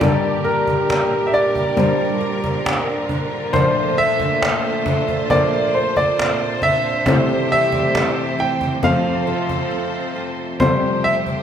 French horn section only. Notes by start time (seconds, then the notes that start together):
0.01 G3 G4
3.54 A3 A4
7.07 G3 G4
8.83 F3 F4